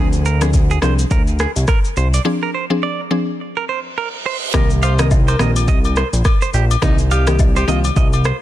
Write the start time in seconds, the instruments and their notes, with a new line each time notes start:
Already playing: analog synth bass D2, synth pluck F3 C4 D4 G#4
0.13 shaker
0.25 clean electric guitar A#4, shaker
0.41 synth pluck F3 C4 D4 G#4, clean electric guitar G#4, cross-stick, shaker
0.53 kick, shaker
0.71 clean electric guitar G#4, shaker
0.82 analog synth bass C2, synth pluck F3 C4 D4 G#4, clean electric guitar C5, cross-stick, shaker
0.99 shaker
1.11 analog synth bass D2, clean electric guitar A#4, kick, shaker
1.27 shaker
1.39 clean electric guitar G#4, cross-stick, shaker
1.56 analog synth bass C2, shaker
1.68 clean electric guitar A#4, kick, cross-stick, shaker
1.84 shaker
1.97 analog synth bass C2, clean electric guitar C5, shaker
2.14 clean electric guitar D5, shaker
2.25 synth pluck F3 C4 D4 G#4
2.43 clean electric guitar A#4
2.55 clean electric guitar C5
2.70 synth pluck F3 C4 D4 G#4
2.83 clean electric guitar D5
3.11 synth pluck F3 C4 D4 G#4
3.40 reverse cymbal
3.57 clean electric guitar A#4
3.69 clean electric guitar C5
3.98 clean electric guitar A#4
4.26 clean electric guitar C5
4.54 analog synth bass C2, synth pluck D#3 A#3 C4 G4, alto saxophone A#4, kick, cross-stick, high agogo, shaker
4.70 shaker
4.83 alto saxophone C5, clean electric guitar F5, high agogo, shaker
4.99 synth pluck D#3 A#3 C4 G4, alto saxophone A#4, clean electric guitar D#5, cross-stick, shaker
5.11 kick, low woodblock, shaker
5.28 alto saxophone A#4, clean electric guitar C5, high agogo, shaker
5.39 analog synth bass A#1, synth pluck D#3 A#3 C4 G4, alto saxophone A#4, clean electric guitar D#5, cross-stick, shaker
5.56 high agogo, shaker
5.68 analog synth bass C2, clean electric guitar D#5, kick, shaker
5.84 high agogo, shaker
5.96 clean electric guitar C5, cross-stick, shaker
6.13 analog synth bass A#1, shaker
6.25 kick, cross-stick, high agogo, shaker
6.41 clean electric guitar C5, shaker
6.54 analog synth bass A#1, clean electric guitar G4, shaker
6.71 high agogo, shaker
6.82 analog synth bass C2, synth pluck D#3 A#3 C4 G4, alto saxophone D#4, kick, cross-stick, high agogo, shaker
6.98 shaker
7.11 alto saxophone G4, clean electric guitar F5, high agogo, shaker
7.27 synth pluck D#3 A#3 C4 G4, alto saxophone G4, clean electric guitar D#5, cross-stick, shaker
7.39 kick, low woodblock, shaker
7.56 alto saxophone G4, clean electric guitar C5, high agogo, shaker
7.67 analog synth bass C2, synth pluck D#3 A#3 C4 G4, alto saxophone F4, clean electric guitar D#5, shaker
7.84 high agogo, shaker
7.96 analog synth bass C2, clean electric guitar D#5, kick, shaker
8.13 high agogo, shaker
8.24 clean electric guitar C5, cross-stick, shaker